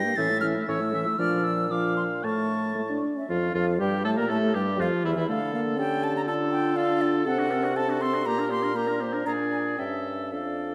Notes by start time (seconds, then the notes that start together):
Already playing: G2 G5 A#6
0.04 A#3 G4
0.16 A2 E3 C#4 E5 A6
0.30 A3 E4
0.41 E3 C#4 F6
0.55 A3 E4
0.68 A2 E3 C#4 C#5 E6
0.80 A3 E4
0.93 E3 C#4 E5
1.05 A3 E4
1.18 A#2 F3 D4 D5 F6
1.44 E6
1.70 F3 D4 F5 D6
1.97 C6
2.23 A2 A3 E4 A5 C#6
2.76 A3
2.90 D4
3.16 C#4 E5
3.29 F2 F3 F4 F5
3.54 F2 F3 F4 F5
3.78 G2 G3 G4 G5
4.05 A2 A3 A4 A5
4.17 A#2 A#3 A#4 A#5
4.29 A2 A3 A4 A5
4.54 G2 G3 G4 G5
4.79 F2 F3 F4 F5
5.04 E2 E3 E4 E5
5.16 E2 E3 E4 E5
5.28 D3 A3 A4 F5
5.53 A#3 F5
5.77 C#4 G4 A4 G5
6.03 A5
6.17 A#5
6.27 D4 F4 A4 A5
6.51 G5
6.76 D4 A4 F5
7.01 D5
7.25 C3 C4 A4 F#5
7.38 D4 F#4
7.50 C4 A4 A#4
7.63 D4 F#4
7.75 C4 A4 A5
7.88 D4 F#4
8.00 C4 A4 C6
8.13 D4 F#4
8.26 A#2 A#3 G4 A#5
8.38 D4 A#4
8.50 A#3 G4 C6
8.62 D4 A#4
8.74 A#3 G4 A#4 A#5
8.87 D4 A#4
9.00 A#3 G4 C5
9.13 D4 A#4
9.25 A#2 D4 G#4 D5 A#5
9.52 G#5
9.78 G2 C#4 A4 E5 G5
10.06 E5
10.32 F2 D4 A4 D5 F5